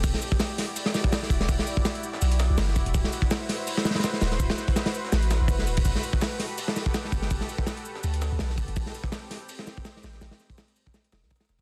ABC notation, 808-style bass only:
X:1
M:4/4
L:1/16
Q:"Swing 16ths" 1/4=165
K:Em
V:1 name="808-style bass" clef=bass
E,,, z12 z E,,,2 | E,,, z6 z B,,,3 B,,, G,,,2 E,,, E,,, | D,,, z12 z D,,,2 | D,,, z6 z A,,,3 A,,, F,,,2 D,,, D,,, |
G,,, z12 z G,,,2 | G,,, z6 z D,,3 D,, B,,,2 G,,, G,,, | A,,, z12 z A,,,2 | A,,, z8 z E,,, C,, z2 E,,,2 |]